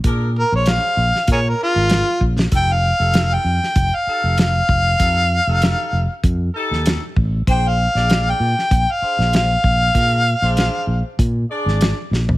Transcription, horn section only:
X:1
M:4/4
L:1/16
Q:"Swing 16ths" 1/4=97
K:Bbmix
V:1 name="Horn section"
[DAB]2 z [DAc]3 z4 [DAB]3 z3 | [EG=A]2 z [EGA]3 z4 [EGA]3 z3 | [EG=A]2 z [EGA]3 z4 [EGA]3 z3 | [DAc]2 z [DAd]3 z4 [DAc]3 z3 |
[DAB]2 z [DAc]3 z4 [DAd]3 z3 |]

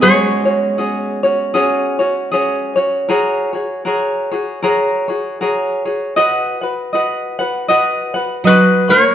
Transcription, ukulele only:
X:1
M:4/4
L:1/8
Q:"Swing" 1/4=78
K:Gb
V:1 name="Ukulele"
[DGAd] [DGd] [DGAd] [DGd] [DGAd] [DGd] [DGAd] [DGd] | [GABd] [GAd] [GABd] [GAd] [GABd] [GAd] [GABd] [GAd] | [^F=B^d^f] [FBf] [FBdf] [FBf] [FBdf] [FBf] [FBdf] [Ff] |]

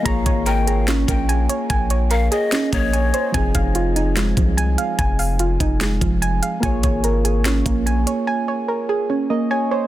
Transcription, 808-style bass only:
X:1
M:4/4
L:1/8
Q:1/4=146
K:Bbdor
V:1 name="808-style bass" clef=bass
B,,, A,,,4 B,,,2 z | B,,,3 z2 B,,,2 z | F,,, F,,,4 C,,2 z | F,,,3 F,,,2 F,,,2 z |
B,,, A,,,4 B,,,2 z | z8 |]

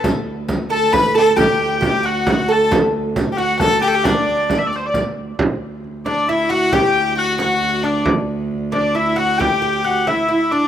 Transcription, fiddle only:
X:1
M:6/8
L:1/16
Q:3/8=90
K:D
V:1 name="Fiddle"
z6 A2 B2 A2 | G4 G2 F4 A2 | z4 z3/2 G/2 F2 A2 G/2 A/2 G | D4- D z6 z |
z6 D2 E2 F2 | G4 F2 F4 D2 | z6 D2 E2 F2 | G6 E4 D2 |]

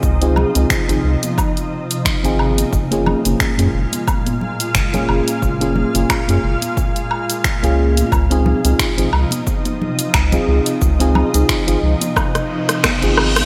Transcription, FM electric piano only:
X:1
M:4/4
L:1/16
Q:"Swing 16ths" 1/4=89
K:Gblyd
V:1 name="FM electric piano"
[CEFA] [CEFA]2 [CEFA]2 [CEFA] z6 z [CEFA]3 | z [B,DFA]2 [B,DFA]2 [B,DFA] z6 z [B,DFA]3- | [B,DFA] [B,DFA]2 [B,DFA]2 [B,DFA] z6 z [B,DFA]3 | z [CEFA]2 [CEFA]2 [CEFA] z6 z [CEFA]3- |
[CEFA] [CEFA]2 [CEFA]2 [CEFA] z6 z [CEFA]3 |]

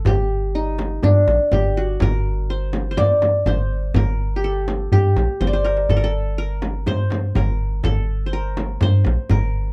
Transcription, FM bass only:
X:1
M:4/4
L:1/16
Q:1/4=123
K:none
V:1 name="FM bass" clef=bass
G,,,8 G,,2 _B,,, z G,,,4 | G,,,8 G,,4 G,,,4 | G,,,8 G,,2 _B,,, z G,,,4 | G,,,8 G,,4 G,,,4 |
G,,,8 G,,2 _B,,, z G,,,4 |]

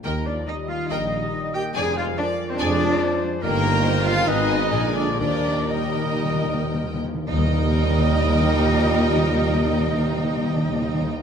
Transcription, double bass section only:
X:1
M:4/4
L:1/8
Q:1/4=122
K:Eb
V:1 name="Double bass section" clef=bass
E,,2 z2 B,,,2 z2 | F,,2 z2 F,,2 z2 | G,,,4 A,,,2 B,,,2 | E,,6- E,, z |
E,,8- | E,,8 |]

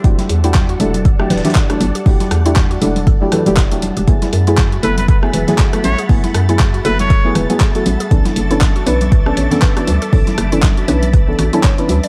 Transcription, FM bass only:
X:1
M:4/4
L:1/16
Q:"Swing 16ths" 1/4=119
K:F#phr
V:1 name="FM bass" clef=bass
E,,, z E,,4 E,,,4 D,,, z3 G,,, z | E,,, z E,,4 E,,,4 z E,,,4 E,,, | F,,, z F,,4 F,,,4 E,,, z3 A,,, z | F,,, z F,,4 F,,,4 E,,, z3 A,,, z |
B,,, z F,,,4 B,,,4 A,,, z3 D,, z | B,,, z F,,,4 B,,,4 A,,, z3 D,, z |]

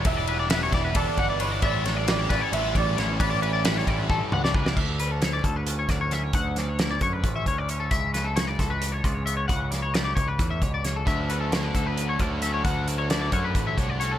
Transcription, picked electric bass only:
X:1
M:7/8
L:1/16
Q:1/4=133
K:D
V:1 name="Picked electric bass" clef=bass
E,,,6 E,,,2 E,,, z G,,,4 | A,,,6 A,,, z A,,,2 A,,,2 A,,,2 | A,,,6 A,,,2 A,,, z C,,4 | D,,6 D,,4 D,,4 |
D,,6 F,,2 A,,,2 D,,4 | C,,6 C,,4 C,,4 | C,,6 C,,2 E,,2 C,,4 | D,,6 D,,4 D,,4 |
D,,6 F,,2 A,,,2 =C,,4 |]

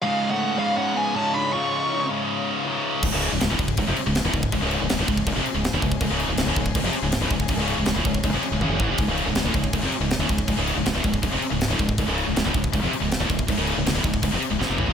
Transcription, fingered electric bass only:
X:1
M:4/4
L:1/16
Q:1/4=160
K:C#
V:1 name="Fingered electric bass" clef=bass
z16 | z16 | C,,, C,,,2 C,,, C,,, =D,,, C,,,2 C,,, E,,, z C,,,2 D,,, C,,,2 | C,,, C,,,2 C,,, C,,, =D,,, C,,,2 C,,, E,,, z C,,,2 D,,, C,,,2 |
C,,, C,,,2 C,,, C,,, =D,,, C,,,2 C,,, E,,, z C,,,2 D,,, C,,,2 | C,,, C,,,2 C,,, C,,, =D,,, C,,,2 C,,, E,,, z C,,, F,,, E,,, =A,,, E,,, | C,,, C,,,2 C,,, C,,, =D,,, C,,,2 C,,, E,,, z C,,,2 D,,, C,,,2 | C,,, C,,,2 C,,, C,,, =D,,, C,,,2 C,,, E,,, z C,,,2 D,,, C,,,2 |
C,,, C,,,2 C,,, C,,, =D,,, C,,,2 C,,, E,,, z C,,,2 D,,, C,,,2 | C,,, C,,,2 C,,, C,,, =D,,, C,,,2 C,,, E,,, z C,,, F,,, E,,, =A,,, E,,, |]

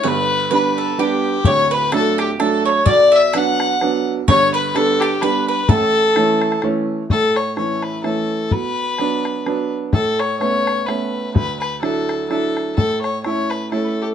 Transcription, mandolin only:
X:1
M:3/4
L:1/8
Q:"Swing" 1/4=127
K:Amix
V:1 name="Mandolin"
B2 B A G2 | c B A G A c | d e f3 z | c B A G B B |
A4 z2 | z6 | z6 | z6 |
z6 | z6 |]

